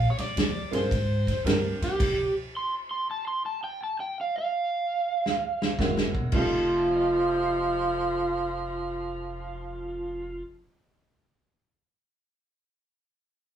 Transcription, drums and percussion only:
0.18 snare soft
0.18 ride medium
0.37 snare loud
0.37 ride medium
0.73 snare soft
0.73 ride medium
0.91 kick loud
0.91 snare soft
0.91 ride medium
1.27 kick medium
1.27 snare soft
1.27 ride medium
1.47 snare loud
1.47 ride medium
1.82 snare soft
1.82 ride medium
2.00 kick loud
2.00 snare soft
2.00 crash medium
2.00 ride medium
5.26 snare medium
5.62 snare medium
5.79 kick medium
5.79 snare medium
5.79 mid tom medium
5.97 snare medium
6.15 kick medium
6.32 kick loud
6.32 crash medium

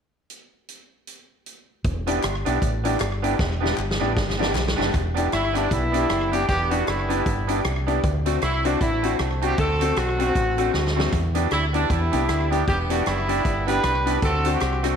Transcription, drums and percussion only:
0.30 closed hi-hat medium
0.69 closed hi-hat medium
1.07 closed hi-hat medium
1.46 closed hi-hat medium
1.84 kick loud
1.84 closed hi-hat medium
2.07 closed hi-hat medium
2.23 cross-stick loud
2.23 clap medium
2.23 closed hi-hat medium
2.46 closed hi-hat medium
2.62 kick loud
2.62 closed hi-hat medium
2.85 closed hi-hat medium
3.00 cross-stick loud
3.00 clap medium
3.00 closed hi-hat medium
3.24 closed hi-hat medium
3.39 kick loud
3.39 snare medium
3.66 snare medium
3.78 clap medium
3.91 snare medium
4.17 kick loud
4.17 snare medium
4.30 snare medium
4.42 snare medium
4.55 snare medium
4.55 clap medium
4.68 snare medium
4.81 snare medium
4.94 kick loud
4.94 closed hi-hat medium
5.17 closed hi-hat medium
5.32 cross-stick loud
5.32 closed hi-hat medium
5.55 cross-stick medium
5.55 closed hi-hat medium
5.71 kick loud
5.71 closed hi-hat medium
5.94 closed hi-hat medium
6.10 cross-stick loud
6.10 closed hi-hat medium
6.33 closed hi-hat medium
6.49 kick loud
6.49 closed hi-hat medium
6.71 closed hi-hat medium
6.87 cross-stick loud
6.87 closed hi-hat medium
7.10 closed hi-hat medium
7.26 kick loud
7.26 closed hi-hat medium
7.49 closed hi-hat medium
7.65 cross-stick loud
7.65 closed hi-hat medium
7.88 closed hi-hat medium
8.03 kick loud
8.03 closed hi-hat medium
8.26 closed hi-hat medium
8.41 cross-stick loud
8.41 closed hi-hat medium
8.65 closed hi-hat medium
8.81 kick loud
8.81 closed hi-hat medium
9.03 closed hi-hat medium
9.19 cross-stick loud
9.19 closed hi-hat medium
9.42 closed hi-hat medium
9.58 kick loud
9.58 closed hi-hat medium
9.81 closed hi-hat medium
9.96 cross-stick loud
9.96 closed hi-hat medium
10.20 closed hi-hat medium
10.35 kick loud
10.35 closed hi-hat medium
10.58 closed hi-hat medium
10.74 snare medium
10.87 snare medium
11.00 snare loud
11.12 kick loud
11.12 closed hi-hat medium
11.35 closed hi-hat medium
11.51 cross-stick loud
11.51 closed hi-hat medium
11.74 closed hi-hat medium
11.90 kick loud
11.90 closed hi-hat medium
12.13 closed hi-hat medium
12.29 cross-stick loud
12.29 closed hi-hat medium
12.52 closed hi-hat medium
12.67 kick loud
12.67 closed hi-hat medium
12.90 closed hi-hat medium
13.06 cross-stick loud
13.06 closed hi-hat medium
13.29 closed hi-hat medium
13.45 kick loud
13.45 closed hi-hat medium
13.68 closed hi-hat medium
13.83 cross-stick loud
13.83 closed hi-hat medium
14.07 closed hi-hat medium
14.22 kick loud
14.22 closed hi-hat medium
14.45 closed hi-hat medium
14.60 cross-stick loud
14.60 closed hi-hat medium
14.84 cross-stick medium
14.84 closed hi-hat medium

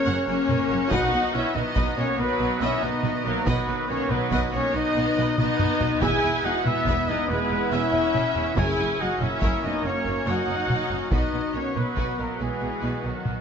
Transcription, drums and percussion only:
0.49 taiko mid medium
0.91 taiko loud
1.55 taiko mid soft
1.76 taiko medium
3.04 taiko mid medium
3.46 taiko loud
4.10 taiko mid medium
4.32 taiko medium
5.38 taiko mid medium
5.59 taiko low-mid medium
5.81 taiko low loud
6.02 taiko loud
6.66 taiko mid medium
6.87 taiko medium
8.15 taiko mid medium
8.57 taiko loud
9.21 taiko mid soft
9.42 taiko medium
10.70 taiko mid medium
11.12 taiko medium
11.76 taiko mid soft
11.97 taiko medium
13.25 taiko mid soft

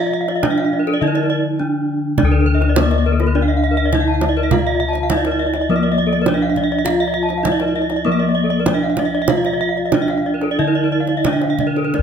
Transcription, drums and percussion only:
0.28 kendang slap soft
0.43 kendang high medium
0.43 kendang low soft
0.58 kendang slap soft
0.87 kendang slap soft
1.15 kendang slap soft
2.18 kendang low medium
2.62 kendang slap soft
2.76 kendang high medium
2.76 kendang low medium
2.91 kendang slap soft
3.20 kendang slap soft
3.93 kendang high soft
3.93 kendang low soft
4.21 kendang high soft
4.51 kendang low medium
4.95 kendang slap soft
5.10 kendang high medium
5.10 kendang low medium
5.25 kendang slap soft
5.54 kendang slap soft
6.26 kendang high soft
6.26 kendang low medium
6.56 kendang low soft
6.86 kendang low medium
7.30 kendang slap soft
7.45 kendang high medium
7.45 kendang low medium
7.60 kendang slap soft
7.90 kendang slap soft
8.66 kendang high soft
8.66 kendang low soft
8.97 kendang high soft
8.97 kendang low soft
9.28 kendang high medium
9.28 kendang low medium
9.45 kendang slap soft
9.92 kendang high soft
9.92 kendang low medium
10.08 kendang slap soft
10.41 kendang slap soft
11.07 kendang slap soft
11.25 kendang high medium
11.25 kendang low soft
11.41 kendang slap soft
11.59 kendang low soft
11.76 kendang slap soft
11.94 kendang high soft

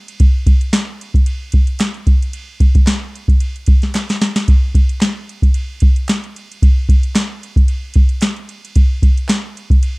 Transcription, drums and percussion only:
0.08 ride medium
0.20 kick loud
0.20 ride medium
0.47 kick loud
0.47 ride medium
0.61 ride medium
0.73 snare loud
0.73 clap medium
0.73 ride medium
1.01 ride medium
1.14 kick medium
1.14 ride soft
1.26 ride medium
1.52 kick medium
1.52 ride medium
1.67 ride soft
1.79 snare loud
1.79 clap medium
1.79 ride medium
1.94 ride soft
2.07 kick loud
2.07 ride medium
2.22 ride medium
2.33 ride medium
2.60 kick loud
2.60 ride medium
2.75 kick loud
2.75 ride medium
2.87 snare loud
2.87 clap medium
2.87 ride medium
3.16 ride soft
3.28 kick loud
3.28 ride soft
3.40 ride medium
3.56 ride soft
3.66 kick loud
3.66 ride medium
3.82 snare soft
3.82 ride soft
3.94 snare medium
3.94 clap medium
3.94 ride medium
4.09 snare medium
4.09 ride soft
4.21 snare medium
4.21 ride medium
4.36 snare loud
4.36 ride medium
4.48 kick loud
4.48 ride medium
4.75 kick medium
4.75 ride medium
4.89 ride medium
5.01 snare loud
5.01 clap medium
5.01 ride medium
5.29 ride soft
5.42 kick medium
5.42 ride soft
5.54 ride medium
5.80 kick loud
5.80 ride medium
5.96 ride soft
6.08 snare loud
6.08 clap medium
6.08 ride medium
6.24 ride soft
6.36 ride medium
6.52 ride medium
6.62 kick loud
6.62 ride medium
6.89 kick loud
6.89 ride medium
7.03 ride medium
7.15 snare loud
7.15 clap medium
7.15 ride medium
7.43 ride medium
7.56 kick medium
7.56 ride soft
7.68 ride medium
7.94 kick loud
7.94 ride medium
8.09 ride soft
8.21 snare loud
8.21 clap medium
8.21 ride medium
8.36 ride soft
8.49 ride medium
8.65 ride medium
8.76 kick loud
8.76 ride medium
9.03 kick loud
9.03 ride medium
9.18 ride soft
9.29 snare loud
9.29 clap medium
9.29 ride medium
9.57 ride medium
9.70 kick loud
9.70 ride soft
9.83 ride medium

